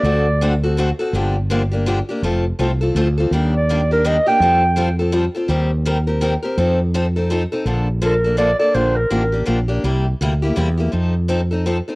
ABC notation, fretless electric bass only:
X:1
M:3/4
L:1/8
Q:"Swing" 1/4=166
K:Fmix
V:1 name="Fretless electric bass" clef=bass
D,,6 | G,,,6 | F,,,2 C,,2 D,,2 | E,,6 |
F,,6 | E,,6 | F,,6 | B,,,6 |
B,,,2 A,,,2 B,,,2 | C,,2 D,,2 =E,,2 | F,,6 |]